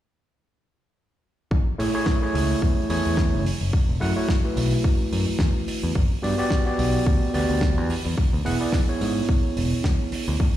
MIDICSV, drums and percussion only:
0, 0, Header, 1, 2, 480
1, 0, Start_track
1, 0, Key_signature, 3, "major"
1, 0, Tempo, 555556
1, 1306, Time_signature, 4, 2, 24, 8
1, 9132, End_track
2, 0, Start_track
2, 0, Title_t, "Drums"
2, 1307, Note_on_c, 9, 36, 111
2, 1393, Note_off_c, 9, 36, 0
2, 1554, Note_on_c, 9, 46, 89
2, 1640, Note_off_c, 9, 46, 0
2, 1781, Note_on_c, 9, 38, 107
2, 1786, Note_on_c, 9, 36, 106
2, 1868, Note_off_c, 9, 38, 0
2, 1872, Note_off_c, 9, 36, 0
2, 2032, Note_on_c, 9, 46, 100
2, 2119, Note_off_c, 9, 46, 0
2, 2265, Note_on_c, 9, 36, 102
2, 2352, Note_off_c, 9, 36, 0
2, 2505, Note_on_c, 9, 46, 97
2, 2591, Note_off_c, 9, 46, 0
2, 2741, Note_on_c, 9, 38, 102
2, 2745, Note_on_c, 9, 36, 103
2, 2827, Note_off_c, 9, 38, 0
2, 2832, Note_off_c, 9, 36, 0
2, 2993, Note_on_c, 9, 46, 99
2, 3079, Note_off_c, 9, 46, 0
2, 3225, Note_on_c, 9, 36, 111
2, 3312, Note_off_c, 9, 36, 0
2, 3474, Note_on_c, 9, 46, 90
2, 3561, Note_off_c, 9, 46, 0
2, 3702, Note_on_c, 9, 38, 113
2, 3705, Note_on_c, 9, 36, 106
2, 3789, Note_off_c, 9, 38, 0
2, 3791, Note_off_c, 9, 36, 0
2, 3948, Note_on_c, 9, 46, 101
2, 4034, Note_off_c, 9, 46, 0
2, 4184, Note_on_c, 9, 36, 111
2, 4271, Note_off_c, 9, 36, 0
2, 4428, Note_on_c, 9, 46, 91
2, 4515, Note_off_c, 9, 46, 0
2, 4654, Note_on_c, 9, 38, 113
2, 4665, Note_on_c, 9, 36, 109
2, 4741, Note_off_c, 9, 38, 0
2, 4751, Note_off_c, 9, 36, 0
2, 4907, Note_on_c, 9, 46, 101
2, 4994, Note_off_c, 9, 46, 0
2, 5144, Note_on_c, 9, 36, 115
2, 5231, Note_off_c, 9, 36, 0
2, 5391, Note_on_c, 9, 46, 98
2, 5478, Note_off_c, 9, 46, 0
2, 5620, Note_on_c, 9, 38, 96
2, 5624, Note_on_c, 9, 36, 114
2, 5707, Note_off_c, 9, 38, 0
2, 5711, Note_off_c, 9, 36, 0
2, 5866, Note_on_c, 9, 46, 102
2, 5952, Note_off_c, 9, 46, 0
2, 6104, Note_on_c, 9, 36, 112
2, 6190, Note_off_c, 9, 36, 0
2, 6344, Note_on_c, 9, 46, 92
2, 6430, Note_off_c, 9, 46, 0
2, 6577, Note_on_c, 9, 38, 108
2, 6584, Note_on_c, 9, 36, 113
2, 6664, Note_off_c, 9, 38, 0
2, 6671, Note_off_c, 9, 36, 0
2, 6824, Note_on_c, 9, 46, 108
2, 6911, Note_off_c, 9, 46, 0
2, 7064, Note_on_c, 9, 36, 112
2, 7150, Note_off_c, 9, 36, 0
2, 7309, Note_on_c, 9, 46, 107
2, 7396, Note_off_c, 9, 46, 0
2, 7538, Note_on_c, 9, 38, 108
2, 7544, Note_on_c, 9, 36, 109
2, 7625, Note_off_c, 9, 38, 0
2, 7631, Note_off_c, 9, 36, 0
2, 7787, Note_on_c, 9, 46, 101
2, 7873, Note_off_c, 9, 46, 0
2, 8024, Note_on_c, 9, 36, 114
2, 8110, Note_off_c, 9, 36, 0
2, 8267, Note_on_c, 9, 46, 100
2, 8353, Note_off_c, 9, 46, 0
2, 8503, Note_on_c, 9, 38, 102
2, 8504, Note_on_c, 9, 36, 112
2, 8589, Note_off_c, 9, 38, 0
2, 8590, Note_off_c, 9, 36, 0
2, 8744, Note_on_c, 9, 46, 110
2, 8831, Note_off_c, 9, 46, 0
2, 8985, Note_on_c, 9, 36, 110
2, 9072, Note_off_c, 9, 36, 0
2, 9132, End_track
0, 0, End_of_file